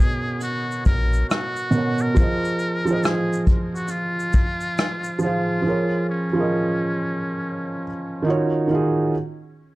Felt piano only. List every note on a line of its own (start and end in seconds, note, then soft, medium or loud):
0.00 1.71 B2 medium
0.00 1.73 B3 medium
0.00 1.74 A#4 medium
0.00 1.76 C#5 medium
0.00 2.19 D#5 loud
1.71 2.12 B2 medium
1.71 2.13 B3 medium
1.71 2.14 A#4 medium
1.76 2.15 C#5 medium
1.76 2.16 F#5 medium
2.14 2.77 F3 medium
2.14 2.78 F4 medium
2.14 2.79 G#4 medium
2.20 2.80 C5 medium
2.20 2.81 D#5 medium
2.85 4.36 F3 medium
2.85 4.37 F4 medium
2.85 4.38 G#4 medium
2.91 4.39 C5 medium
2.91 4.40 D#5 medium
5.19 5.60 F3 medium
5.19 5.61 F4 medium
5.19 5.62 G#4 medium
5.24 5.63 C5 medium
5.24 5.64 F5 medium
5.62 6.25 F3 medium
5.62 6.26 F4 medium
5.66 6.27 G#4 medium
5.66 6.28 A#4 medium
5.66 6.29 C#5 medium
6.33 7.84 F3 medium
6.33 7.85 F4 medium
6.33 7.86 G#4 medium
6.39 7.87 A#4 medium
6.39 7.88 D#5 medium
8.22 8.64 D#3 medium
8.22 8.65 D#4 medium
8.27 8.66 F4 medium
8.27 8.67 F#4 medium
8.27 8.68 C#5 loud
8.67 9.08 D#3 medium
8.67 9.09 D#4 medium
8.67 9.10 F4 medium
8.73 9.11 F#4 medium
8.73 9.12 G#4 medium